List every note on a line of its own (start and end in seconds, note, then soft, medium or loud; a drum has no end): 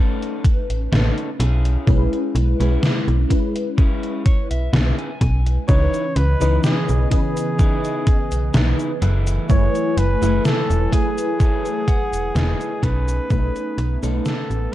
0.00 1.42 A3 loud
0.00 0.45 C#4 medium
0.00 1.42 C#4 medium
0.00 0.45 D#4 medium
0.00 1.42 D#4 medium
0.00 0.45 A4 loud
0.00 1.42 B4 loud
0.22 closed hi-hat soft
0.45 kick loud
0.45 closed hi-hat medium
0.70 0.88 A1 soft
0.70 closed hi-hat medium
0.92 1.11 A1 loud
0.92 1.28 C#4 medium
0.92 1.29 D#4 medium
0.92 1.29 A4 loud
0.92 snare loud
0.92 closed hi-hat medium
1.18 closed hi-hat soft
1.39 1.77 B1 loud
1.39 2.35 C#4 medium
1.39 2.35 E4 medium
1.39 2.35 G#4 loud
1.39 closed hi-hat medium
1.65 closed hi-hat medium
1.87 2.07 B1 loud
1.87 2.54 G#3 medium
1.87 2.54 C#4 medium
1.87 2.54 E4 medium
1.87 2.54 B4 loud
1.87 kick loud
1.87 closed hi-hat soft
2.13 closed hi-hat soft
2.35 2.54 B1 medium
2.35 closed hi-hat medium
2.60 2.77 B1 medium
2.60 3.25 G#3 medium
2.60 2.95 C#4 medium
2.60 3.25 C#4 medium
2.60 2.95 E4 medium
2.60 3.25 E4 medium
2.60 2.96 G#4 loud
2.60 3.25 B4 medium
2.60 closed hi-hat soft
2.83 snare loud
2.83 closed hi-hat soft
3.08 3.25 B1 medium
3.08 closed hi-hat soft
3.29 5.62 G#3 medium
3.29 5.63 C#4 medium
3.29 5.63 E4 medium
3.29 5.64 B4 medium
3.29 muted clean electric guitar stroke soft
3.29 kick medium
3.29 closed hi-hat medium
3.56 closed hi-hat soft
3.77 4.25 C#4 medium
3.77 4.25 E4 medium
3.77 4.26 G#4 loud
3.77 kick loud
3.77 closed hi-hat soft
4.03 closed hi-hat soft
4.25 4.49 C#5 medium
4.25 kick loud
4.25 closed hi-hat medium
4.51 4.69 B1 soft
4.51 4.72 E5 medium
4.51 closed hi-hat soft
4.73 4.92 B1 loud
4.73 5.09 C#4 medium
4.73 5.10 E4 medium
4.73 5.10 G#4 medium
4.73 4.97 E5 medium
4.73 snare loud
4.73 closed hi-hat soft
4.98 5.19 G#5 medium
4.98 closed hi-hat soft
5.21 5.58 B1 medium
5.21 5.65 G#5 medium
5.21 kick medium
5.21 closed hi-hat medium
5.46 muted clean electric guitar stroke soft
5.46 closed hi-hat soft
5.68 5.88 C#2 loud
5.68 8.98 C#3 medium
5.68 6.35 E3 medium
5.68 12.79 E3 medium
5.68 8.98 B3 medium
5.68 6.35 C#4 medium
5.68 6.05 D#4 loud
5.68 6.05 E4 medium
5.68 6.05 B4 loud
5.68 6.35 B4 loud
5.68 6.18 C#5 loud
5.68 8.99 D#5 medium
5.68 6.35 D#5 medium
5.68 kick loud
5.68 closed hi-hat soft
5.68 cabasa soft
5.94 closed hi-hat soft
5.94 cabasa soft
6.16 6.35 C#2 medium
6.16 6.64 B4 loud
6.16 closed hi-hat medium
6.40 6.59 C#2 medium
6.40 7.05 E3 loud
6.40 7.06 C#4 medium
6.40 6.76 D#4 medium
6.40 6.76 E4 medium
6.40 6.77 B4 loud
6.40 7.06 B4 loud
6.40 7.06 D#5 medium
6.40 closed hi-hat soft
6.40 cabasa soft
6.64 7.08 G#4 medium
6.64 snare loud
6.64 closed hi-hat medium
6.64 cabasa soft
6.89 7.06 B1 medium
6.89 closed hi-hat soft
6.89 cabasa soft
7.10 8.98 E3 medium
7.10 8.99 C#4 medium
7.10 8.98 G#4 medium
7.10 9.00 B4 loud
7.10 8.99 D#5 medium
7.10 muted clean electric guitar stroke soft
7.10 kick medium
7.10 closed hi-hat medium
7.37 closed hi-hat soft
7.37 cabasa soft
7.59 8.06 D#4 medium
7.59 8.07 E4 medium
7.59 8.07 B4 loud
7.59 kick loud
7.59 closed hi-hat soft
7.59 cabasa soft
7.85 closed hi-hat soft
7.85 cabasa soft
8.07 kick loud
8.07 closed hi-hat medium
8.32 8.50 B1 soft
8.32 closed hi-hat soft
8.32 cabasa medium
8.54 8.74 B1 loud
8.54 8.90 D#4 medium
8.54 8.91 E4 medium
8.54 8.91 B4 loud
8.54 snare loud
8.54 closed hi-hat soft
8.54 cabasa soft
8.80 closed hi-hat soft
8.80 cabasa soft
9.01 9.39 F#1 loud
9.01 12.79 F#3 medium
9.01 12.79 A3 medium
9.01 9.97 E4 medium
9.01 9.97 G#4 medium
9.01 9.97 A4 medium
9.01 12.79 B4 medium
9.01 9.97 B4 medium
9.01 12.79 G#5 medium
9.01 closed hi-hat medium
9.27 closed hi-hat soft
9.27 cabasa soft
9.49 9.69 F#1 loud
9.49 10.16 A3 medium
9.49 10.16 E4 medium
9.49 10.17 B4 loud
9.49 10.00 C#5 loud
9.49 10.16 G#5 medium
9.49 kick loud
9.49 closed hi-hat soft
9.49 cabasa soft
9.75 closed hi-hat soft
9.75 cabasa soft
9.97 10.16 F#1 medium
9.97 10.45 B4 loud
9.97 closed hi-hat medium
10.21 10.39 F#1 medium
10.21 10.86 A3 medium
10.21 10.87 E4 medium
10.21 10.57 E4 medium
10.21 10.57 G#4 medium
10.21 10.57 A4 medium
10.21 10.87 B4 medium
10.21 10.57 B4 medium
10.21 10.87 G#5 medium
10.21 closed hi-hat soft
10.21 cabasa medium
10.45 10.95 A4 loud
10.45 snare loud
10.45 closed hi-hat soft
10.45 cabasa soft
10.70 10.87 E1 medium
10.70 closed hi-hat soft
10.70 cabasa soft
10.91 12.79 A3 medium
10.91 12.80 E4 medium
10.91 12.85 G#4 loud
10.91 12.81 B4 loud
10.91 12.80 G#5 medium
10.91 11.37 G#5 medium
10.91 muted clean electric guitar stroke soft
10.91 kick medium
10.91 closed hi-hat medium
11.18 closed hi-hat soft
11.18 cabasa soft
11.39 11.87 E4 medium
11.39 11.87 G#4 medium
11.39 11.88 A4 medium
11.39 11.88 C#5 medium
11.39 11.84 E5 medium
11.39 kick loud
11.39 closed hi-hat soft
11.39 cabasa soft
11.66 closed hi-hat soft
11.66 cabasa soft
11.87 12.32 F#5 medium
11.87 kick medium
11.87 closed hi-hat medium
12.13 12.31 E1 soft
12.13 closed hi-hat soft
12.13 cabasa medium
12.34 12.54 E1 loud
12.34 12.71 E4 medium
12.34 12.71 G#4 medium
12.34 12.72 A4 medium
12.34 12.72 B4 medium
12.34 13.26 D#5 medium
12.34 snare loud
12.34 closed hi-hat soft
12.34 cabasa soft
12.61 closed hi-hat soft
12.61 cabasa soft
12.82 13.20 B1 loud
12.82 14.75 A3 medium
12.82 14.75 B3 medium
12.82 13.78 C#4 medium
12.82 14.75 D#4 medium
12.82 13.78 D#4 medium
12.82 13.78 A4 loud
12.82 14.00 B4 loud
12.82 kick medium
12.82 closed hi-hat medium
13.08 closed hi-hat soft
13.08 cabasa medium
13.30 13.50 B1 loud
13.30 13.97 A3 medium
13.30 13.97 C#4 medium
13.30 13.97 D#4 medium
13.30 13.97 B4 loud
13.30 kick loud
13.30 closed hi-hat medium
13.30 cabasa soft
13.56 closed hi-hat soft
13.56 cabasa soft
13.78 13.97 B1 medium
13.78 closed hi-hat medium
14.03 14.20 B1 medium
14.03 14.68 A3 medium
14.03 14.38 C#4 medium
14.03 14.68 C#4 medium
14.03 14.38 D#4 medium
14.03 14.68 D#4 medium
14.03 14.38 A4 loud
14.03 14.68 B4 loud
14.03 closed hi-hat soft
14.03 cabasa medium
14.25 14.75 A4 loud
14.25 snare loud
14.25 closed hi-hat medium
14.25 cabasa soft
14.50 14.68 A1 medium
14.50 closed hi-hat soft
14.50 cabasa soft